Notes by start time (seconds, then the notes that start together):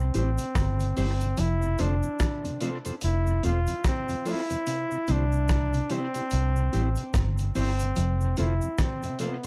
Already playing: C4
0.14 A1 E3 G3 C4 E4 G4 C5, closed hi-hat, cabasa
0.38 C3, closed hi-hat, cabasa
0.55 G1, kick, cross-stick, closed hi-hat, cabasa
0.80 C3, closed hi-hat, cabasa
0.96 G1 E3 G3 C4 E4 G4 C5, open hi-hat, cabasa
1.21 C3, muted clean electric guitar stroke, closed hi-hat, cabasa
1.37 F1 F3 E4, closed hi-hat, cabasa
1.62 F2 C3, cabasa
1.78 F1 D3 F3 A3 C4 D4 F4 A4 C5, closed hi-hat, cabasa
2.03 F2 C3, cabasa
2.19 E3, kick, cross-stick, closed hi-hat, cabasa
2.44 F2 C3, closed hi-hat, cabasa
2.60 C3 F3 A3 C4 F4 A4 C5, closed hi-hat, cabasa
2.85 F2 C3 C4 F4 A4 C5, closed hi-hat, cabasa
3.01 F1 E4, closed hi-hat, cabasa
3.27 F2 C3, cabasa
3.43 E1 F3 A3 C4 F4 A4 C5, closed hi-hat, cabasa
3.67 F2 C3, closed hi-hat, cabasa
3.84 C4, kick, cross-stick, closed hi-hat, cabasa
4.08 F2 C3, closed hi-hat, cabasa
4.25 F3 A3 C4 E4 F4 A4 C5, open hi-hat, cabasa
4.50 F2 C3, muted clean electric guitar stroke, closed hi-hat, cabasa
4.66 C3, closed hi-hat, cabasa
4.91 C3, cabasa
5.07 C2 D3 E3 G3 C4 E4 G4 C5, closed hi-hat, cabasa
5.12 D4
5.32 C3, cabasa
5.48 E3, kick, cross-stick, closed hi-hat, cabasa
5.73 C3, closed hi-hat, cabasa
5.90 C3 E3 G3 C4 E4 G4 C5, closed hi-hat, cabasa
6.14 C3 C4 E4 G4 C5, closed hi-hat, cabasa
6.30 C2, closed hi-hat, cabasa
6.56 C3, cabasa
6.73 A1 E3 G3 C4 E4 G4 C5, closed hi-hat, cabasa
6.96 C3, closed hi-hat, cabasa
7.14 G1, kick, cross-stick, closed hi-hat, cabasa
7.38 C3, closed hi-hat, cabasa
7.55 G1 E3 G3 C4 E4 G4 C5, open hi-hat, cabasa
7.79 C3, closed hi-hat, cabasa
7.96 F1 F3, closed hi-hat, cabasa
8.21 F2 C3, cabasa
8.36 F1 D3 F3 A3 C4 E4 F4 A4 C5, closed hi-hat, cabasa
8.62 F2 C3, cabasa
8.78 E3 C4, kick, cross-stick, closed hi-hat, cabasa
9.02 F2 C3, closed hi-hat, cabasa
9.19 C3 F3 A3 B3 C4 F4 A4 C5, closed hi-hat, cabasa
9.43 closed hi-hat